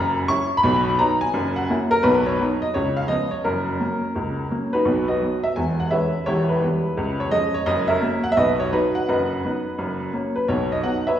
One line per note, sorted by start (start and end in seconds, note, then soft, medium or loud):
0.00 0.23 F#1 medium
0.00 0.23 F#2 medium
0.00 0.28 A#5 loud
0.28 0.48 F#3 medium
0.28 0.48 C#4 medium
0.28 0.49 E4 medium
0.28 0.58 C#6 loud
0.57 0.99 B5 loud
0.63 0.93 B1 medium
0.63 0.94 B2 loud
0.98 1.18 F#3 medium
0.98 1.19 B3 medium
0.98 1.19 D#4 medium
0.98 1.22 A#5 loud
1.21 1.57 G#5 loud
1.34 1.64 F#1 medium
1.34 1.64 F#2 medium
1.56 1.69 F#5 loud
1.69 1.89 F#3 medium
1.69 1.89 A#3 medium
1.69 1.89 E4 medium
1.91 2.04 A#4 loud
2.03 2.34 B1 medium
2.03 2.34 B2 medium
2.03 2.27 B4 loud
2.26 2.62 C#5 medium
2.40 2.59 F#3 medium
2.40 2.59 B3 medium
2.40 2.60 D#4 medium
2.62 2.74 D#5 medium
2.74 3.05 C#2 medium
2.74 3.05 C#3 medium
2.74 2.97 C#5 medium
2.97 3.09 F5 loud
3.08 3.28 F3 soft
3.08 3.28 B3 medium
3.08 3.29 C#4 medium
3.08 3.32 D#5 loud
3.31 3.44 C#5 medium
3.44 3.75 F#1 medium
3.44 3.75 F#2 medium
3.44 4.50 A#4 medium
3.79 3.99 F#3 medium
3.79 3.99 A#3 medium
3.79 4.00 C#4 medium
4.15 4.45 C#2 medium
4.15 4.45 C#3 medium
4.50 4.70 F#3 soft
4.50 4.70 A#3 soft
4.50 4.70 C#4 medium
4.73 5.06 D#4 medium
4.73 5.07 F#4 medium
4.73 5.07 B4 medium
4.85 5.15 B1 medium
4.85 5.15 B2 medium
5.08 5.41 F#4 medium
5.08 5.41 B4 medium
5.08 5.43 D#5 medium
5.21 5.41 F#3 soft
5.21 5.41 B3 medium
5.43 5.56 E5 medium
5.56 5.86 E1 medium
5.56 5.86 E2 medium
5.56 5.79 G#5 medium
5.80 5.91 F#5 medium
5.91 6.11 E3 soft
5.91 6.11 G#3 soft
5.91 6.11 C#4 soft
5.91 6.24 B4 medium
5.91 6.24 C#5 medium
5.91 6.26 E5 medium
6.26 6.56 E1 medium
6.26 6.56 E2 medium
6.26 6.48 E4 medium
6.26 6.48 G4 medium
6.26 6.49 C#5 loud
6.49 7.16 E4 soft
6.49 7.16 G4 medium
6.49 7.19 B4 medium
6.61 6.80 E3 medium
6.61 6.81 G3 medium
6.61 6.81 B3 medium
6.97 7.27 C#2 medium
6.97 7.27 C#3 medium
7.20 7.32 C#5 loud
7.31 7.51 F3 medium
7.31 7.51 G#3 medium
7.31 7.52 C#4 medium
7.31 7.55 D#5 loud
7.54 7.67 C#5 loud
7.66 7.97 F#1 medium
7.66 7.96 F#2 medium
7.66 7.90 D#5 loud
7.88 8.22 A#4 medium
7.88 8.22 C#5 medium
7.88 8.24 E5 loud
8.01 8.21 F#3 medium
8.01 8.21 A#3 medium
8.01 8.21 C#4 medium
8.24 8.30 F#5 loud
8.32 8.38 E5 loud
8.37 8.67 B1 medium
8.37 8.67 B2 medium
8.37 8.59 F#4 medium
8.37 8.59 B4 medium
8.37 8.60 D#5 loud
8.60 8.72 C#5 loud
8.72 8.92 F#3 soft
8.72 8.92 B3 soft
8.72 8.94 D#4 medium
8.72 8.94 F#4 medium
8.72 8.96 B4 medium
8.95 9.07 F#5 loud
9.08 9.38 F#1 medium
9.08 9.38 F#2 medium
9.08 10.10 B4 medium
9.08 10.10 D#5 medium
9.08 10.14 F#5 medium
9.44 9.63 F#3 soft
9.44 9.63 B3 soft
9.44 9.64 D#4 soft
9.78 10.08 F#1 medium
9.78 10.08 F#2 medium
10.13 10.32 F#3 soft
10.13 10.33 A#3 soft
10.13 10.33 C#4 medium
10.36 10.48 B4 medium
10.48 10.78 B1 medium
10.48 10.78 B2 medium
10.48 10.71 C#5 loud
10.72 10.84 D#5 medium
10.83 11.03 F#3 soft
10.83 11.04 B3 soft
10.83 11.04 D#4 medium
10.83 11.07 F#5 loud
11.07 11.20 B4 medium
11.07 11.20 C#5 medium
11.07 11.20 E5 medium